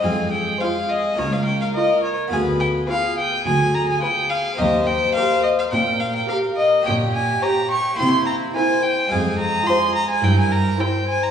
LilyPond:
<<
  \new Staff \with { instrumentName = "Violin" } { \time 4/4 \key ees \mixolydian \tempo 4 = 106 aes''8 g''8 f''8 ees''8 des''16 f''16 g''16 f''16 ees''8 des''16 r16 | aes''8 g''8 f''8 g''8 aes''8 bes''16 aes''16 g''8 f''8 | ees''8 g''8 f''8 ees''16 f''16 g''8 f''16 g''16 f''8 ees''8 | \key c \phrygian g''8 aes''8 bes''8 des'''8 c'''8 bes''8 aes''8 g''8 |
aes''8 bes''8 c'''8 bes''16 aes''16 g''16 aes''16 bes''8 g''8 aes''16 bes''16 | }
  \new Staff \with { instrumentName = "Violin section" } { \time 4/4 \key ees \mixolydian r4 c''4 r4 bes'4 | r4 b'4 r4 b'4 | r4 bes'4 r4 bes'4 | \key c \phrygian r4 des''4 r4 bes'4 |
r4 c''4 r4 c''4 | }
  \new Staff \with { instrumentName = "Violin section" } { \time 4/4 \key ees \mixolydian aes'2 bes'2 | b'4 aes'2. | c''2 bes'2 | \key c \phrygian g'2 e'4 c''4 |
aes'2 bes'4 c''4 | }
  \new Staff \with { instrumentName = "Viola section" } { \time 4/4 \key ees \mixolydian r4 f'4 r4 f'4 | r4 f'4 r4 f'4 | r4 g'4 r4 g'4 | \key c \phrygian r4 g'4 r4 e'4 |
r4 f'4 r4 e'4 | }
  \new Staff \with { instrumentName = "Harpsichord" } { \time 4/4 \key ees \mixolydian <aes c' f'>2 <bes des' f'>2 | <b f' aes'>1 | <bes g' bes'>1 | \key c \phrygian <bes g' des''>2 <bes e' c''>2 |
<aes f' c''>2 <e' c''>2 | }
  \new Staff \with { instrumentName = "Harpsichord" } { \clef bass \time 4/4 \key ees \mixolydian f,4 r4 des,4 r4 | d,4 r4 d,4 r4 | ees,4 r4 bes,4 r4 | \key c \phrygian bes,4 r4 c4 r4 |
f,4 r4 g,4 r4 | }
  \new Staff \with { instrumentName = "Cello section" } { \clef bass \time 4/4 \key ees \mixolydian f,4 r4 des,4 r4 | d,4 r4 d,4 r4 | ees,4 r4 bes,4 r4 | \key c \phrygian bes,4 r4 c4 r4 |
f,4 r4 g,4 r4 | }
>>